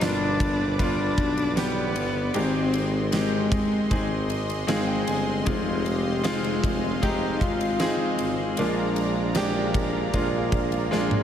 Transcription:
Already playing: G2 B2 B3 G4 B4 D5 D6
0.00 G1 G3 A#3 D4 F4, snare, ride
0.08 B3
0.40 kick, ride
0.78 G3 B3 D4 F4, kick, ride
1.18 B1, kick, ride
1.37 ride
1.56 G3 B3 D4 G4, snare, ride
1.96 G1, ride
2.34 G#1 G#2 D#3 G#3 C4 D#4 G4 D#5 C6, ride
2.74 ride
3.12 G#3 C4 D#4 G4, snare, ride
3.52 kick, ride
3.90 G#1 G#3 C4 D#4 G#4, kick, ride
4.30 D#5, ride
4.50 ride
4.67 G#1 G#3 C4 D#4 G#4 F5, snare, ride
4.87 G5
5.07 G1 G#5, ride
5.45 F1 C3 G#3 C4 D#4 F4 G#4 F5, kick, ride
5.86 G4, ride
6.24 F1 G#3 C4 D#4 F4 G#4, snare, ride
6.44 ride
6.64 F4, kick, ride
7.02 G#3 C4 D#4 G4, kick, ride
7.41 G#1 F4, kick, ride
7.61 ride
7.80 G#3 C4 D#4 G#4, snare, ride
8.19 G#1, ride
8.57 A#1 A#2 F3 G#3 A#3 D4 F4 D5 F5 A#5, ride
8.96 ride
9.35 G#3 A#3 D4 G4, snare, ride
9.74 kick, ride
10.13 A#1 G#3 A#3 D4 F4, kick, ride
10.52 kick, ride
10.72 ride
10.91 A#1 G#3 A#3 D4 F4, snare
11.11 high tom

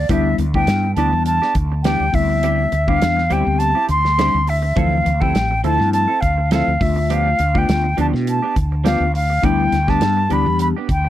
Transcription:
Already playing: D5
0.09 D2 E3 G3 B3 D4 E4 G4 E5, kick, closed hi-hat
0.38 D2, muted clean electric guitar stroke, closed hi-hat
0.54 G3 B3 D4 E4 G4 G5, kick
0.67 G2, muted clean electric guitar stroke, snare, closed hi-hat
0.84 muted clean electric guitar stroke
0.95 D2 E3 G3 B3 D4 E4 G4 A5, closed hi-hat
1.13 E2, muted clean electric guitar stroke
1.26 A5, closed hi-hat
1.42 B3 D4 G4, snare
1.55 D2 D4 E4, muted clean electric guitar stroke, kick, closed hi-hat
1.72 muted clean electric guitar stroke
1.83 E3 G3 B3 D4 G4 G5, snare, closed hi-hat
2.00 D2
2.12 D2 G3 B3 C4 E4 E5, muted clean electric guitar stroke, kick, open hi-hat
2.29 muted clean electric guitar stroke
2.43 G3 C4 E4 G4, closed hi-hat
2.72 D2, muted clean electric guitar stroke, closed hi-hat
2.87 G3 B3 C4 D4 E4 G4 F5, kick
3.01 E2, muted clean electric guitar stroke, snare, closed hi-hat
3.17 muted clean electric guitar stroke, snare
3.30 D2 G3 B3 C4 E4 G4 G5, closed hi-hat
3.45 D2, muted clean electric guitar stroke
3.59 A5, closed hi-hat
3.75 C4 E4 G4
3.89 D2 C4 E4 C6, muted clean electric guitar stroke, closed hi-hat
4.05 muted clean electric guitar stroke, snare
4.18 G3 B3 C4 D4 E4 G4, snare, closed hi-hat
4.34 D2
4.47 C4 E4 E5, muted clean electric guitar stroke, open hi-hat
4.62 muted clean electric guitar stroke
4.76 D2 E3 F3 A3 C4 E4 A4 F5, kick, closed hi-hat
5.06 D2, muted clean electric guitar stroke, closed hi-hat
5.20 F3 A3 C4 E4 G4 A4 G5, kick
5.35 A1, muted clean electric guitar stroke, snare, closed hi-hat
5.51 muted clean electric guitar stroke
5.63 D2 F3 A3 C4 E4 A4 A5, closed hi-hat
5.79 G2, muted clean electric guitar stroke, snare
5.93 A5, closed hi-hat
6.08 C4 E4 A4
6.21 D2 C4 G4 F5, muted clean electric guitar stroke, kick, closed hi-hat
6.38 muted clean electric guitar stroke
6.51 F3 A3 C4 E4 A4 F5, snare, closed hi-hat
6.67 D2
6.80 D2 A3 B3 D4 F4 E5, muted clean electric guitar stroke, kick, open hi-hat
6.96 muted clean electric guitar stroke
7.10 F3 B3 D4 G4 F5, closed hi-hat
7.39 D2, muted clean electric guitar stroke, closed hi-hat
7.54 A3 B3 D4 F4 G4 G5, kick
7.69 D2, snare, closed hi-hat
7.84 muted clean electric guitar stroke
7.97 D2 F3 A3 B3 D4 E4 G4 A5, closed hi-hat
8.13 B2, muted clean electric guitar stroke, snare
8.27 A5, closed hi-hat
8.42 B3 D4 G4
8.56 D2 D4 E4, muted clean electric guitar stroke, kick, closed hi-hat
8.72 muted clean electric guitar stroke
8.84 F3 A3 B3 D4 F4 G4 F5, snare, closed hi-hat
9.00 D2
9.14 F5, muted clean electric guitar stroke, open hi-hat
9.30 muted clean electric guitar stroke
9.42 D2 E3 G3 B3 D4 E4 G4 G5, kick, closed hi-hat
9.72 D2, muted clean electric guitar stroke, snare, closed hi-hat
9.87 G3 B3 D4 G4 A5, kick, snare
10.01 G2, muted clean electric guitar stroke, snare, closed hi-hat
10.17 muted clean electric guitar stroke
10.29 D2 E3 G3 B3 D4 G4 B5, closed hi-hat
10.46 E2, muted clean electric guitar stroke
10.59 B5, closed hi-hat
10.77 B3 D4 G4
10.87 D2 D4 E4 G5, muted clean electric guitar stroke, kick, closed hi-hat
11.05 muted clean electric guitar stroke

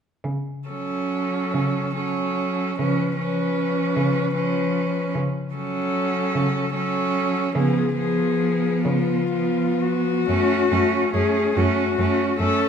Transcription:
0.24 C#3
0.68 F#3 C#4 A4
1.54 C#3
1.95 F#3 C#4 A4
2.79 C#3 F3 C#4 B4
3.18 F3 C#4 B4
3.96 C#3
4.35 F3 C#4 B4
5.15 C#3
5.54 F#3 C#4 A4
6.35 C#3
6.74 F#3 C#4 A4
7.55 C#3 F3 B3 G#4
7.97 F3 B3 G#4
8.85 C#3 F4
9.32 F3 B3
9.81 F#4
10.29 F#2 A3 C#4
10.71 F#2 A3 C#4
11.13 F#2 A3 C#4 G#4
11.55 F#2 A3 C#4 F#4
11.97 F#2 A3 C#4
12.38 F#2 A3 C#4 A4

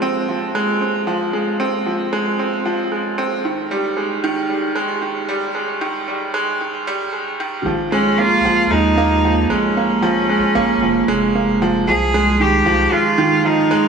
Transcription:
Already playing: F3 G#3 C4
0.02 C4
0.29 F2 F3
0.55 G#3
0.81 C4
1.07 C#2 F3
1.33 G#3
1.60 C4
1.86 F3
2.13 C#2 G#3
2.39 C4
2.65 F3
2.92 G#3
3.18 C4
3.45 D#3
3.71 G3
3.97 G#3
4.24 D#3
4.50 G3
4.75 G#3
5.02 D#3
5.29 G3
5.55 G#3
5.81 D#3
6.08 G3
6.34 G#3
6.61 D#3
6.87 G3
7.13 G#3
7.40 D#3
7.65 A#1 F3
7.91 G#3 C#4
8.18 A#3 F4
8.44 A#1 F3
8.71 D#2 G#3 D#4
8.98 A#3
9.25 F3
9.50 A#1 G#3 C#4
9.77 A#3
10.02 F3
10.30 G#3
10.55 A#1 A#3
10.82 F1 F3
11.08 F1 G#3
11.35 A#3
11.62 F3
11.87 C2 F3 G#4
12.14 G#3
12.40 D#3 G4
12.66 C2 F3
12.92 G#3 F4
13.18 D#3
13.44 F3 D#4
13.71 G#3

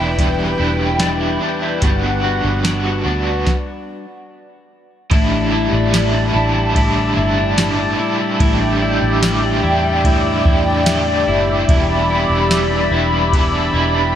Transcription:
Already playing: E1 E2 E3 G3 D4 E4 B4 D5 G5
0.17 E2 B2 E3 G3 D4 E4, kick, closed hi-hat
0.39 G3
0.58 E1 G3 D4 E4
0.62 E3
0.80 G3
0.99 E3 G3 D4, snare, closed hi-hat
1.03 E4
1.21 E4
1.40 G3 D4 E4
1.44 E3
1.62 E4
1.81 G1 G3 B3 D4 F#4 F#5, kick, closed hi-hat
2.04 B3
2.22 B3 D4 F#4
2.44 G1 B3
2.63 G3 B3 D4, snare, closed hi-hat, tambourine
2.68 F#4
2.85 F#4
3.04 D2 B3 D4 F#4
3.26 F#4
3.47 kick, snare
5.10 A1 A2 D3 G3 D4 E4 G4 D5 E5 A5, kick, ride
5.32 D4
5.51 G3 D4 E4
5.73 A1 D4
5.92 A2 D3 G3 D4 E4, snare, ride, tambourine
6.14 D4
6.33 A1 D4 E4
6.38 G3
6.55 G3
6.74 A2 D3 G3 D4 E4, kick, ride
6.78 E4
6.96 D4
7.16 G1 D4 E4
7.20 G3
7.37 D4
7.57 A2 D3 G3 D4 E4, snare, ride, tambourine
7.79 D4
7.98 D4 E4
8.02 G3
8.19 G3
8.39 A1 A2 D3 G3 D4 E4 G5, kick, ride
8.61 D4
8.80 G3 D4 E4
9.01 A1 D4
9.21 A2 D3 G3 D4 E4, snare, ride, tambourine
9.43 D4
9.62 E2 D4 E4
9.67 G3
9.84 G3
10.03 A2 D3 G3 D4 E4, kick, ride
10.08 E4
10.25 D4
10.45 E2 D4 E4, kick
10.49 G3
10.66 D4
10.86 A2 D3 G3 D4 E4, snare, ride, tambourine
11.07 D4
11.27 F#1 G3 D4 E4
11.48 G3
11.68 E1 E2 B2 E3 G3 D4 E4 B5, kick, ride
11.89 D4
12.09 E3 G3 D4 E4
12.30 E1 D4
12.50 E2 B2 E3 G3 D4 E4, snare, ride, tambourine
12.71 D4
12.91 E1 G3 D4 E4
12.95 E3
13.13 G3
13.32 E2 E3 G3 D4 E4, kick, ride
13.36 E4
13.53 D4
13.73 E1 G3 D4 E4
13.77 E3
13.95 D4

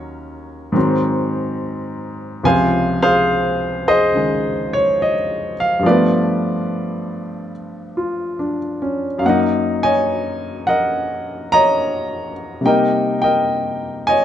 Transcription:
Already playing: D#2 D#3 F#3 C#4 F#4 A#4 C#5
0.72 G#2 D#3 F#3
0.77 C4
2.43 C#2 C3 C#3 F3 C5 F5 G#5
3.02 G#4 C5 F5
3.88 G#4 C5 D#5
4.13 C#3 D#3 G#3
4.73 C#5
5.02 D#5
5.60 F5
5.79 G2 F3
5.86 A3 F4 B4 D5
5.91 B3
7.97 F4
8.39 D4
8.82 C#4
9.18 F#2 F#3 F5
9.25 A#3 A#4 D#5 F#5
9.29 D#4
9.83 C#5 D#5 G#5
10.67 A#4 D#5 F#5
11.52 C#5 D#5 A#5
12.61 C3 G3 A#3
12.66 D#4 A#4 D#5 G5
13.22 A#4 D#5 G5
14.07 C#5 D#5 G#5

